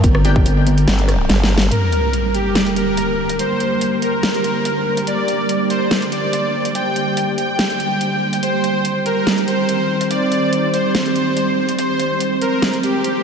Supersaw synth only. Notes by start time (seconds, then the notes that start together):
1.71 A#4
2.35 G4
2.76 A#4
3.39 C5
4.02 A#4
5.07 D5
5.70 C5
6.12 D5
6.75 G5
7.38 G5
8.43 C5
9.06 A#4
9.48 C5
10.11 D5
10.74 C5
11.79 C5
12.41 A#4
12.83 G4